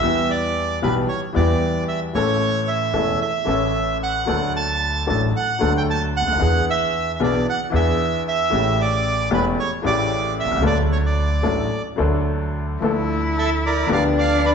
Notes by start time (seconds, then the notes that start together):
Already playing: E5
0.00 E2 E3 G3 B3
0.04 G4
0.31 D5
0.82 B1 B2 E3 G3 B3 G4 B4
1.09 C#5
1.34 E2 E3 G3 B3 G4 D5
1.88 E5
2.13 A1 A2 E3 A3 C#4 A4 C#5
2.68 E5
2.93 E1 E2 E3 A3 C#4 A4
3.21 E5
3.44 A1 A2 E3 A3 C#4
3.48 A4
4.03 F#5
4.25 D2 D3 F#3 A3 D4
4.29 A4
4.56 A5
5.07 A1 A2 F#3 A3 D4 A4 A5
5.36 F#5
5.59 D2 D3 F#3 A3 D4 A4
5.77 G5
5.90 A5
6.17 F#5
6.21 C#2
6.28 D2
6.33 D#2
6.39 E2 E3 B3 D4 G#4
6.70 E5
7.15 E5
7.20 B1 B2 E3 B3 D4 G#4 D5
7.49 F#5
7.70 E2 E3 B3 D4 G#4
7.76 E5
8.28 E5
8.50 A1 A2 C#3 E3 A3 G4
8.81 D5
9.31 E1 E2 E3 A3 C#4 G4 B4
9.59 C#5
9.82 A1 A2 C#3 E3 A3 D5
9.86 G4
10.40 E5
10.44 B1
10.51 C2
10.57 C#2 F#3
10.62 D2 D3 A3 D4 A4
10.67 D5
10.92 C#5
11.06 D5
11.43 A1 A2 F#3 A3 D4 A4
11.96 D2 D3 F#3 A3 D4
12.00 A4
12.80 D2 D3 F3 A3 D4 E4 A4
13.38 A4 E5
13.66 A#4 D5
13.87 D2 D3 F3 B3 D4
13.91 G4 D5 F5
14.18 D5 F5
14.45 B4 D5